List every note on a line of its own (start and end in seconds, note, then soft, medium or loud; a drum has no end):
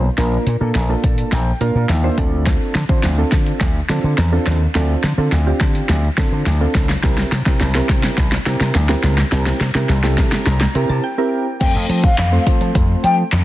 0.18 0.37 A#1 loud
0.18 0.46 A#3 medium
0.18 0.46 D4 medium
0.18 0.46 F4 medium
0.18 0.46 A#4 loud
0.18 snare medium
0.18 closed hi-hat medium
0.46 0.56 A#2 loud
0.46 closed hi-hat medium
0.61 0.70 A#2 loud
0.61 0.80 A#3 medium
0.61 0.80 D4 medium
0.61 0.80 F4 medium
0.61 0.80 A4 medium
0.75 0.94 A#1 loud
0.75 snare medium
0.75 closed hi-hat loud
0.89 1.36 A#3 medium
0.89 1.36 D4 medium
0.89 1.37 F4 medium
0.89 1.37 A4 medium
1.04 1.22 A#2 medium
1.04 1.30 A5 medium
1.04 kick medium
1.04 closed hi-hat medium
1.18 closed hi-hat medium
1.32 1.51 A#1 loud
1.32 1.59 G5 medium
1.32 snare medium
1.32 closed hi-hat medium
1.61 1.70 A#2 medium
1.61 1.89 A#3 medium
1.61 1.89 D4 medium
1.61 1.89 F4 medium
1.61 1.89 A#4 medium
1.61 1.87 F5 medium
1.61 closed hi-hat medium
1.75 1.84 A#2 medium
1.89 2.08 D#2 medium
1.89 2.16 E5 medium
1.89 snare medium
1.89 closed hi-hat medium
2.04 2.18 A#3 medium
2.04 2.17 D4 medium
2.04 2.17 F4 medium
2.04 2.18 C5 loud
2.18 2.55 D2 medium
2.18 2.75 C4 medium
2.18 2.75 D4 medium
2.18 2.75 F4 medium
2.18 2.75 A4 loud
2.18 2.45 D5 medium
2.18 kick medium
2.18 closed hi-hat medium
2.46 kick loud
2.46 snare medium
2.46 closed hi-hat medium
2.75 2.84 D3 loud
2.75 snare medium
2.75 closed hi-hat medium
2.89 2.99 D3 loud
2.89 3.08 C4 medium
2.89 3.08 D4 medium
2.89 3.08 F4 medium
2.89 3.08 C5 medium
2.89 kick medium
3.03 3.22 D2 loud
3.03 snare medium
3.03 closed hi-hat loud
3.18 3.65 C4 medium
3.18 3.65 D4 medium
3.18 3.65 F4 medium
3.18 3.65 A4 medium
3.32 3.51 D3 loud
3.32 kick medium
3.32 snare medium
3.32 closed hi-hat medium
3.46 closed hi-hat medium
3.61 3.79 D2 loud
3.61 kick medium
3.61 snare medium
3.61 closed hi-hat medium
3.89 3.99 D3 loud
3.89 4.18 C4 medium
3.89 4.18 D4 medium
3.89 4.18 F4 medium
3.89 4.18 A4 loud
3.89 snare medium
3.89 closed hi-hat medium
4.04 4.13 D3 loud
4.18 4.37 E2 loud
4.18 snare medium
4.18 closed hi-hat medium
4.32 4.60 C4 medium
4.32 4.61 D4 medium
4.32 4.61 F4 medium
4.32 4.61 A4 loud
4.47 4.65 D#2 medium
4.47 snare medium
4.47 closed hi-hat medium
4.75 4.94 D2 loud
4.75 5.03 C4 medium
4.75 5.03 D4 medium
4.75 5.03 F4 medium
4.75 5.04 A4 loud
4.75 snare loud
4.75 closed hi-hat medium
5.04 5.13 D3 medium
5.04 snare medium
5.04 closed hi-hat medium
5.18 5.27 D3 loud
5.18 5.37 C4 medium
5.18 5.37 D4 medium
5.18 5.37 F4 medium
5.18 5.37 A4 medium
5.32 5.51 D2 loud
5.32 snare loud
5.32 closed hi-hat loud
5.47 5.94 C4 medium
5.47 5.94 D4 medium
5.47 5.94 F4 medium
5.47 5.94 G4 loud
5.61 5.79 D3 medium
5.61 kick medium
5.61 snare loud
5.61 closed hi-hat medium
5.75 closed hi-hat medium
5.89 6.08 D2 loud
5.89 snare loud
5.89 closed hi-hat medium
6.18 6.27 D3 medium
6.18 6.46 C4 medium
6.18 6.46 D4 medium
6.18 6.46 F4 medium
6.18 6.46 A4 loud
6.18 kick loud
6.18 snare loud
6.18 closed hi-hat medium
6.32 6.41 D3 loud
6.46 6.65 D2 medium
6.46 snare loud
6.46 closed hi-hat medium
6.61 6.89 C4 medium
6.61 6.89 D4 medium
6.61 6.89 F4 medium
6.61 6.89 A4 loud
6.75 6.93 C#2 loud
6.75 kick loud
6.75 snare loud
6.75 closed hi-hat medium
6.89 snare loud
7.03 7.22 C2 loud
7.03 7.32 C4 medium
7.03 7.32 E4 medium
7.03 7.32 G4 medium
7.03 7.32 A#4 loud
7.03 kick loud
7.03 snare loud
7.03 closed hi-hat medium
7.18 snare loud
7.32 7.41 C3 loud
7.32 snare loud
7.32 closed hi-hat medium
7.46 7.56 C3 loud
7.46 7.65 C4 medium
7.46 7.65 E4 medium
7.46 7.65 G4 medium
7.46 7.66 A#4 loud
7.46 kick medium
7.46 snare loud
7.61 7.79 C2 loud
7.61 snare loud
7.61 closed hi-hat loud
7.75 8.22 C4 medium
7.75 8.22 E4 medium
7.75 8.22 G4 medium
7.75 8.22 A#4 loud
7.75 snare loud
7.89 8.08 C3 loud
7.89 kick medium
7.89 snare loud
7.89 closed hi-hat medium
8.03 snare loud
8.03 closed hi-hat medium
8.18 8.36 C2 loud
8.18 kick medium
8.18 snare loud
8.18 closed hi-hat medium
8.32 snare loud
8.46 8.56 C3 loud
8.46 8.75 C4 medium
8.46 8.75 E4 medium
8.46 8.75 G4 medium
8.46 8.75 A#4 loud
8.46 snare loud
8.46 closed hi-hat medium
8.61 8.70 C3 loud
8.61 snare loud
8.75 8.94 D2 medium
8.75 snare loud
8.75 closed hi-hat loud
8.89 9.17 C4 medium
8.89 9.18 E4 medium
8.89 9.18 G4 medium
8.89 9.18 A#4 loud
8.89 snare loud
9.03 9.22 C#2 medium
9.03 snare loud
9.03 closed hi-hat medium
9.18 snare loud
9.32 9.51 C2 loud
9.32 9.60 C4 medium
9.32 9.60 E4 medium
9.32 9.60 G4 medium
9.32 9.61 A#4 loud
9.32 snare loud
9.32 closed hi-hat medium
9.46 snare loud
9.61 9.70 C3 loud
9.61 snare loud
9.61 closed hi-hat medium
9.75 9.84 C3 medium
9.75 9.94 C4 medium
9.75 9.94 E4 medium
9.75 9.94 G4 medium
9.75 9.94 A#4 loud
9.75 snare loud
9.89 10.19 C2 loud
9.89 snare loud
9.89 closed hi-hat loud
10.03 10.51 C4 medium
10.03 10.51 E4 medium
10.03 10.51 G4 medium
10.03 10.51 A4 loud
10.03 snare loud
10.18 10.37 C3 loud
10.18 10.45 A#5 medium
10.18 kick loud
10.18 snare loud
10.18 closed hi-hat medium
10.32 snare loud
10.32 closed hi-hat medium
10.46 10.65 C2 loud
10.46 10.86 A#5 medium
10.46 snare loud
10.46 closed hi-hat medium
10.61 snare loud
10.75 10.84 C3 loud
10.75 11.03 C4 medium
10.75 11.03 E4 medium
10.75 11.03 G4 medium
10.75 11.04 A#4 loud
10.75 closed hi-hat medium
10.89 10.99 C3 loud
10.89 11.03 A5 medium
11.04 11.57 G5 medium
11.18 11.46 C4 medium
11.18 11.46 E4 medium
11.18 11.46 G4 medium
11.18 11.46 A#4 loud
11.61 11.70 F2 loud
11.61 12.08 A3 medium
11.61 12.08 C4 medium
11.61 12.08 F4 medium
11.61 12.08 A4 medium
11.61 12.08 C5 medium
11.61 11.73 G5 loud
11.61 kick loud
11.61 closed hi-hat medium
11.61 crash loud
11.75 11.84 F2 loud
11.89 12.08 F3 loud
11.89 closed hi-hat medium
12.04 12.44 F5 medium
12.04 kick loud
12.18 12.37 F2 loud
12.18 snare medium
12.18 clap loud
12.18 closed hi-hat loud
12.32 12.42 A3 medium
12.32 12.42 C4 medium
12.32 12.42 F4 medium
12.32 12.42 A4 medium
12.32 12.42 C5 medium
12.46 12.56 F3 loud
12.46 13.22 A3 medium
12.46 13.22 C4 medium
12.46 13.22 F4 medium
12.46 13.22 A4 medium
12.46 13.22 C5 medium
12.46 kick loud
12.46 closed hi-hat medium
12.61 12.70 F3 loud
12.61 closed hi-hat medium
12.75 12.94 F2 loud
12.75 kick loud
12.75 closed hi-hat medium
13.04 13.22 F3 loud
13.04 13.16 G5 medium
13.04 closed hi-hat medium
13.32 13.44 F2 loud
13.32 snare loud
13.32 clap loud
13.32 closed hi-hat loud